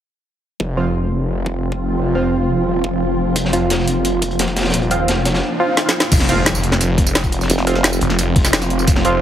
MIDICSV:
0, 0, Header, 1, 9, 480
1, 0, Start_track
1, 0, Tempo, 344828
1, 834, Time_signature, 4, 2, 24, 8
1, 12827, End_track
2, 0, Start_track
2, 0, Title_t, "Ambient pad"
2, 0, Program_c, 0, 92
2, 834, Note_on_c, 0, 60, 77
2, 1383, Note_on_c, 0, 65, 96
2, 1649, Note_on_c, 0, 77, 75
2, 7554, Note_off_c, 0, 60, 0
2, 7554, Note_off_c, 0, 65, 0
2, 7554, Note_off_c, 0, 77, 0
2, 12827, End_track
3, 0, Start_track
3, 0, Title_t, "Synth drone"
3, 0, Program_c, 1, 95
3, 834, Note_on_c, 1, 53, 79
3, 834, Note_on_c, 1, 65, 84
3, 835, Note_on_c, 1, 60, 68
3, 4636, Note_off_c, 1, 60, 0
3, 4673, Note_on_c, 1, 58, 71
3, 7498, Note_off_c, 1, 65, 0
3, 7499, Note_off_c, 1, 53, 0
3, 7525, Note_off_c, 1, 58, 0
3, 8515, Note_on_c, 1, 65, 84
3, 8516, Note_on_c, 1, 53, 79
3, 8516, Note_on_c, 1, 60, 73
3, 12827, Note_off_c, 1, 53, 0
3, 12827, Note_off_c, 1, 60, 0
3, 12827, Note_off_c, 1, 65, 0
3, 12827, End_track
4, 0, Start_track
4, 0, Title_t, "Synth stab"
4, 0, Program_c, 2, 62
4, 1074, Note_on_c, 2, 53, 81
4, 1074, Note_on_c, 2, 60, 76
4, 1074, Note_on_c, 2, 65, 90
4, 1209, Note_off_c, 2, 53, 0
4, 1209, Note_off_c, 2, 60, 0
4, 1209, Note_off_c, 2, 65, 0
4, 2994, Note_on_c, 2, 53, 77
4, 2994, Note_on_c, 2, 60, 69
4, 2994, Note_on_c, 2, 65, 83
4, 3129, Note_off_c, 2, 53, 0
4, 3129, Note_off_c, 2, 60, 0
4, 3129, Note_off_c, 2, 65, 0
4, 4915, Note_on_c, 2, 53, 88
4, 4915, Note_on_c, 2, 60, 75
4, 4915, Note_on_c, 2, 65, 92
4, 5049, Note_off_c, 2, 53, 0
4, 5049, Note_off_c, 2, 65, 0
4, 5050, Note_off_c, 2, 60, 0
4, 6834, Note_on_c, 2, 53, 80
4, 6835, Note_on_c, 2, 60, 73
4, 6835, Note_on_c, 2, 65, 87
4, 6969, Note_off_c, 2, 53, 0
4, 6969, Note_off_c, 2, 60, 0
4, 6969, Note_off_c, 2, 65, 0
4, 7794, Note_on_c, 2, 65, 89
4, 7795, Note_on_c, 2, 53, 85
4, 7795, Note_on_c, 2, 60, 78
4, 8126, Note_off_c, 2, 53, 0
4, 8126, Note_off_c, 2, 60, 0
4, 8126, Note_off_c, 2, 65, 0
4, 8155, Note_on_c, 2, 53, 76
4, 8155, Note_on_c, 2, 60, 69
4, 8155, Note_on_c, 2, 65, 84
4, 8289, Note_off_c, 2, 53, 0
4, 8289, Note_off_c, 2, 60, 0
4, 8289, Note_off_c, 2, 65, 0
4, 8756, Note_on_c, 2, 53, 86
4, 8756, Note_on_c, 2, 60, 83
4, 8756, Note_on_c, 2, 65, 98
4, 8890, Note_off_c, 2, 53, 0
4, 8890, Note_off_c, 2, 60, 0
4, 8890, Note_off_c, 2, 65, 0
4, 10675, Note_on_c, 2, 53, 76
4, 10675, Note_on_c, 2, 60, 74
4, 10675, Note_on_c, 2, 65, 86
4, 10810, Note_off_c, 2, 53, 0
4, 10810, Note_off_c, 2, 60, 0
4, 10810, Note_off_c, 2, 65, 0
4, 12595, Note_on_c, 2, 53, 87
4, 12595, Note_on_c, 2, 60, 81
4, 12595, Note_on_c, 2, 65, 94
4, 12729, Note_off_c, 2, 53, 0
4, 12729, Note_off_c, 2, 60, 0
4, 12729, Note_off_c, 2, 65, 0
4, 12827, End_track
5, 0, Start_track
5, 0, Title_t, "Detuned saw bass"
5, 0, Program_c, 3, 39
5, 834, Note_on_c, 3, 29, 99
5, 1535, Note_off_c, 3, 29, 0
5, 1553, Note_on_c, 3, 29, 93
5, 2735, Note_off_c, 3, 29, 0
5, 2753, Note_on_c, 3, 29, 91
5, 3588, Note_off_c, 3, 29, 0
5, 3588, Note_on_c, 3, 28, 91
5, 3934, Note_off_c, 3, 28, 0
5, 3954, Note_on_c, 3, 29, 101
5, 4655, Note_off_c, 3, 29, 0
5, 4675, Note_on_c, 3, 29, 94
5, 5375, Note_off_c, 3, 29, 0
5, 5394, Note_on_c, 3, 29, 103
5, 6575, Note_off_c, 3, 29, 0
5, 6593, Note_on_c, 3, 27, 100
5, 7055, Note_off_c, 3, 27, 0
5, 7073, Note_on_c, 3, 29, 96
5, 7535, Note_off_c, 3, 29, 0
5, 8514, Note_on_c, 3, 29, 96
5, 10415, Note_off_c, 3, 29, 0
5, 11153, Note_on_c, 3, 29, 104
5, 12334, Note_off_c, 3, 29, 0
5, 12354, Note_on_c, 3, 29, 94
5, 12827, Note_off_c, 3, 29, 0
5, 12827, End_track
6, 0, Start_track
6, 0, Title_t, "Wobble bass"
6, 0, Program_c, 4, 39
6, 10434, Note_on_c, 4, 29, 105
6, 11135, Note_off_c, 4, 29, 0
6, 12827, End_track
7, 0, Start_track
7, 0, Title_t, "Impact"
7, 0, Program_c, 5, 103
7, 8514, Note_on_c, 5, 60, 75
7, 10434, Note_off_c, 5, 60, 0
7, 12827, End_track
8, 0, Start_track
8, 0, Title_t, "Riser"
8, 0, Program_c, 6, 103
8, 4674, Note_on_c, 6, 60, 75
8, 8514, Note_off_c, 6, 60, 0
8, 12827, End_track
9, 0, Start_track
9, 0, Title_t, "Drums"
9, 834, Note_on_c, 9, 36, 121
9, 974, Note_off_c, 9, 36, 0
9, 2034, Note_on_c, 9, 36, 93
9, 2173, Note_off_c, 9, 36, 0
9, 2394, Note_on_c, 9, 36, 60
9, 2533, Note_off_c, 9, 36, 0
9, 3954, Note_on_c, 9, 36, 104
9, 4093, Note_off_c, 9, 36, 0
9, 4674, Note_on_c, 9, 42, 81
9, 4675, Note_on_c, 9, 36, 119
9, 4678, Note_off_c, 9, 42, 0
9, 4678, Note_on_c, 9, 42, 89
9, 4799, Note_on_c, 9, 38, 49
9, 4814, Note_off_c, 9, 36, 0
9, 4818, Note_off_c, 9, 42, 0
9, 4915, Note_on_c, 9, 42, 61
9, 4919, Note_off_c, 9, 42, 0
9, 4919, Note_on_c, 9, 42, 68
9, 4938, Note_off_c, 9, 38, 0
9, 5058, Note_off_c, 9, 42, 0
9, 5154, Note_on_c, 9, 42, 84
9, 5157, Note_on_c, 9, 38, 106
9, 5164, Note_off_c, 9, 42, 0
9, 5164, Note_on_c, 9, 42, 84
9, 5279, Note_off_c, 9, 38, 0
9, 5279, Note_on_c, 9, 38, 49
9, 5303, Note_off_c, 9, 42, 0
9, 5394, Note_on_c, 9, 42, 60
9, 5399, Note_off_c, 9, 42, 0
9, 5399, Note_on_c, 9, 42, 72
9, 5418, Note_off_c, 9, 38, 0
9, 5538, Note_off_c, 9, 42, 0
9, 5635, Note_on_c, 9, 42, 82
9, 5641, Note_off_c, 9, 42, 0
9, 5641, Note_on_c, 9, 42, 81
9, 5780, Note_off_c, 9, 42, 0
9, 5875, Note_on_c, 9, 36, 105
9, 5875, Note_on_c, 9, 42, 63
9, 5999, Note_off_c, 9, 42, 0
9, 5999, Note_on_c, 9, 42, 35
9, 6014, Note_off_c, 9, 36, 0
9, 6115, Note_off_c, 9, 42, 0
9, 6115, Note_on_c, 9, 42, 88
9, 6119, Note_off_c, 9, 42, 0
9, 6119, Note_on_c, 9, 38, 117
9, 6119, Note_on_c, 9, 42, 85
9, 6227, Note_off_c, 9, 42, 0
9, 6227, Note_on_c, 9, 42, 44
9, 6234, Note_on_c, 9, 36, 65
9, 6258, Note_off_c, 9, 38, 0
9, 6351, Note_off_c, 9, 42, 0
9, 6351, Note_on_c, 9, 42, 59
9, 6354, Note_on_c, 9, 38, 85
9, 6355, Note_off_c, 9, 42, 0
9, 6355, Note_on_c, 9, 42, 55
9, 6374, Note_off_c, 9, 36, 0
9, 6413, Note_off_c, 9, 42, 0
9, 6413, Note_on_c, 9, 42, 59
9, 6422, Note_off_c, 9, 38, 0
9, 6422, Note_on_c, 9, 38, 78
9, 6463, Note_off_c, 9, 38, 0
9, 6463, Note_on_c, 9, 38, 88
9, 6470, Note_off_c, 9, 42, 0
9, 6470, Note_on_c, 9, 42, 61
9, 6538, Note_off_c, 9, 38, 0
9, 6538, Note_on_c, 9, 38, 83
9, 6541, Note_off_c, 9, 42, 0
9, 6541, Note_on_c, 9, 42, 66
9, 6583, Note_off_c, 9, 42, 0
9, 6583, Note_on_c, 9, 42, 83
9, 6595, Note_off_c, 9, 42, 0
9, 6595, Note_on_c, 9, 42, 89
9, 6677, Note_off_c, 9, 38, 0
9, 6706, Note_off_c, 9, 42, 0
9, 6706, Note_on_c, 9, 42, 40
9, 6829, Note_off_c, 9, 42, 0
9, 6829, Note_on_c, 9, 42, 63
9, 6834, Note_off_c, 9, 42, 0
9, 6834, Note_on_c, 9, 42, 61
9, 6973, Note_off_c, 9, 42, 0
9, 7075, Note_on_c, 9, 42, 85
9, 7077, Note_off_c, 9, 42, 0
9, 7077, Note_on_c, 9, 42, 88
9, 7083, Note_on_c, 9, 38, 109
9, 7216, Note_off_c, 9, 42, 0
9, 7222, Note_off_c, 9, 38, 0
9, 7311, Note_on_c, 9, 38, 89
9, 7314, Note_on_c, 9, 42, 74
9, 7315, Note_off_c, 9, 42, 0
9, 7315, Note_on_c, 9, 42, 61
9, 7438, Note_off_c, 9, 38, 0
9, 7438, Note_on_c, 9, 38, 103
9, 7441, Note_off_c, 9, 42, 0
9, 7441, Note_on_c, 9, 42, 76
9, 7577, Note_off_c, 9, 38, 0
9, 7580, Note_off_c, 9, 42, 0
9, 8035, Note_on_c, 9, 38, 70
9, 8174, Note_off_c, 9, 38, 0
9, 8195, Note_on_c, 9, 38, 84
9, 8334, Note_off_c, 9, 38, 0
9, 8355, Note_on_c, 9, 38, 93
9, 8494, Note_off_c, 9, 38, 0
9, 8515, Note_on_c, 9, 36, 123
9, 8515, Note_on_c, 9, 42, 98
9, 8515, Note_on_c, 9, 49, 105
9, 8515, Note_on_c, 9, 54, 51
9, 8517, Note_off_c, 9, 42, 0
9, 8517, Note_on_c, 9, 42, 87
9, 8631, Note_on_c, 9, 38, 47
9, 8635, Note_on_c, 9, 40, 39
9, 8654, Note_off_c, 9, 36, 0
9, 8654, Note_off_c, 9, 49, 0
9, 8654, Note_off_c, 9, 54, 0
9, 8656, Note_off_c, 9, 42, 0
9, 8755, Note_on_c, 9, 42, 65
9, 8757, Note_off_c, 9, 42, 0
9, 8757, Note_on_c, 9, 42, 69
9, 8770, Note_off_c, 9, 38, 0
9, 8774, Note_off_c, 9, 40, 0
9, 8896, Note_off_c, 9, 42, 0
9, 8986, Note_on_c, 9, 38, 107
9, 8995, Note_off_c, 9, 38, 0
9, 8995, Note_on_c, 9, 38, 123
9, 8995, Note_on_c, 9, 42, 105
9, 8995, Note_on_c, 9, 54, 52
9, 9116, Note_off_c, 9, 54, 0
9, 9116, Note_on_c, 9, 54, 63
9, 9128, Note_off_c, 9, 38, 0
9, 9128, Note_on_c, 9, 38, 44
9, 9134, Note_off_c, 9, 42, 0
9, 9230, Note_on_c, 9, 42, 68
9, 9236, Note_off_c, 9, 42, 0
9, 9236, Note_on_c, 9, 42, 69
9, 9255, Note_off_c, 9, 54, 0
9, 9267, Note_off_c, 9, 38, 0
9, 9356, Note_on_c, 9, 38, 37
9, 9356, Note_on_c, 9, 40, 38
9, 9375, Note_off_c, 9, 42, 0
9, 9472, Note_on_c, 9, 42, 94
9, 9476, Note_off_c, 9, 42, 0
9, 9476, Note_on_c, 9, 42, 93
9, 9476, Note_on_c, 9, 54, 48
9, 9496, Note_off_c, 9, 38, 0
9, 9496, Note_off_c, 9, 40, 0
9, 9615, Note_off_c, 9, 42, 0
9, 9615, Note_off_c, 9, 54, 0
9, 9715, Note_on_c, 9, 36, 100
9, 9716, Note_on_c, 9, 42, 70
9, 9725, Note_off_c, 9, 42, 0
9, 9725, Note_on_c, 9, 42, 62
9, 9835, Note_on_c, 9, 54, 59
9, 9842, Note_off_c, 9, 42, 0
9, 9842, Note_on_c, 9, 42, 45
9, 9854, Note_off_c, 9, 36, 0
9, 9953, Note_off_c, 9, 42, 0
9, 9953, Note_on_c, 9, 42, 94
9, 9956, Note_off_c, 9, 42, 0
9, 9956, Note_off_c, 9, 54, 0
9, 9956, Note_on_c, 9, 38, 120
9, 9956, Note_on_c, 9, 42, 99
9, 9956, Note_on_c, 9, 54, 51
9, 9960, Note_off_c, 9, 38, 0
9, 9960, Note_on_c, 9, 38, 113
9, 10075, Note_on_c, 9, 36, 61
9, 10076, Note_off_c, 9, 54, 0
9, 10076, Note_on_c, 9, 54, 28
9, 10077, Note_off_c, 9, 42, 0
9, 10077, Note_on_c, 9, 42, 40
9, 10099, Note_off_c, 9, 38, 0
9, 10191, Note_off_c, 9, 42, 0
9, 10191, Note_on_c, 9, 42, 69
9, 10196, Note_off_c, 9, 42, 0
9, 10196, Note_on_c, 9, 42, 66
9, 10214, Note_off_c, 9, 36, 0
9, 10215, Note_off_c, 9, 54, 0
9, 10316, Note_on_c, 9, 54, 28
9, 10327, Note_on_c, 9, 38, 46
9, 10335, Note_off_c, 9, 42, 0
9, 10432, Note_on_c, 9, 42, 89
9, 10436, Note_off_c, 9, 42, 0
9, 10436, Note_off_c, 9, 54, 0
9, 10436, Note_on_c, 9, 42, 96
9, 10436, Note_on_c, 9, 54, 48
9, 10466, Note_off_c, 9, 38, 0
9, 10555, Note_on_c, 9, 40, 39
9, 10556, Note_off_c, 9, 42, 0
9, 10556, Note_on_c, 9, 42, 43
9, 10575, Note_off_c, 9, 54, 0
9, 10676, Note_off_c, 9, 42, 0
9, 10676, Note_on_c, 9, 42, 67
9, 10683, Note_off_c, 9, 42, 0
9, 10683, Note_on_c, 9, 42, 73
9, 10695, Note_off_c, 9, 40, 0
9, 10796, Note_on_c, 9, 40, 33
9, 10822, Note_off_c, 9, 42, 0
9, 10907, Note_on_c, 9, 38, 112
9, 10915, Note_off_c, 9, 38, 0
9, 10915, Note_on_c, 9, 38, 127
9, 10915, Note_on_c, 9, 42, 96
9, 10915, Note_on_c, 9, 54, 52
9, 10917, Note_off_c, 9, 42, 0
9, 10917, Note_on_c, 9, 42, 90
9, 10935, Note_off_c, 9, 40, 0
9, 11035, Note_off_c, 9, 54, 0
9, 11035, Note_on_c, 9, 54, 60
9, 11054, Note_off_c, 9, 38, 0
9, 11056, Note_off_c, 9, 42, 0
9, 11147, Note_on_c, 9, 42, 69
9, 11155, Note_off_c, 9, 42, 0
9, 11155, Note_on_c, 9, 42, 65
9, 11175, Note_off_c, 9, 54, 0
9, 11276, Note_on_c, 9, 40, 38
9, 11294, Note_off_c, 9, 42, 0
9, 11396, Note_on_c, 9, 42, 91
9, 11396, Note_on_c, 9, 54, 46
9, 11399, Note_off_c, 9, 42, 0
9, 11399, Note_on_c, 9, 42, 92
9, 11415, Note_off_c, 9, 40, 0
9, 11535, Note_off_c, 9, 54, 0
9, 11538, Note_off_c, 9, 42, 0
9, 11635, Note_on_c, 9, 36, 111
9, 11635, Note_on_c, 9, 46, 74
9, 11636, Note_on_c, 9, 42, 65
9, 11756, Note_on_c, 9, 38, 39
9, 11756, Note_on_c, 9, 54, 58
9, 11774, Note_off_c, 9, 36, 0
9, 11774, Note_off_c, 9, 46, 0
9, 11775, Note_off_c, 9, 42, 0
9, 11874, Note_off_c, 9, 38, 0
9, 11874, Note_on_c, 9, 38, 116
9, 11876, Note_off_c, 9, 38, 0
9, 11876, Note_off_c, 9, 54, 0
9, 11876, Note_on_c, 9, 38, 127
9, 11876, Note_on_c, 9, 42, 92
9, 11876, Note_on_c, 9, 54, 48
9, 11995, Note_off_c, 9, 42, 0
9, 11995, Note_off_c, 9, 54, 0
9, 11995, Note_on_c, 9, 40, 35
9, 11995, Note_on_c, 9, 42, 39
9, 11995, Note_on_c, 9, 54, 28
9, 12015, Note_off_c, 9, 38, 0
9, 12114, Note_off_c, 9, 42, 0
9, 12114, Note_on_c, 9, 42, 66
9, 12115, Note_off_c, 9, 42, 0
9, 12115, Note_on_c, 9, 42, 64
9, 12134, Note_off_c, 9, 40, 0
9, 12134, Note_off_c, 9, 54, 0
9, 12235, Note_on_c, 9, 54, 27
9, 12254, Note_off_c, 9, 42, 0
9, 12349, Note_on_c, 9, 42, 87
9, 12354, Note_off_c, 9, 42, 0
9, 12354, Note_off_c, 9, 54, 0
9, 12354, Note_on_c, 9, 42, 93
9, 12354, Note_on_c, 9, 54, 47
9, 12355, Note_on_c, 9, 36, 127
9, 12468, Note_on_c, 9, 38, 49
9, 12475, Note_on_c, 9, 40, 38
9, 12494, Note_off_c, 9, 36, 0
9, 12494, Note_off_c, 9, 42, 0
9, 12494, Note_off_c, 9, 54, 0
9, 12592, Note_on_c, 9, 42, 72
9, 12594, Note_off_c, 9, 42, 0
9, 12594, Note_on_c, 9, 42, 64
9, 12607, Note_off_c, 9, 38, 0
9, 12614, Note_off_c, 9, 40, 0
9, 12733, Note_off_c, 9, 42, 0
9, 12827, End_track
0, 0, End_of_file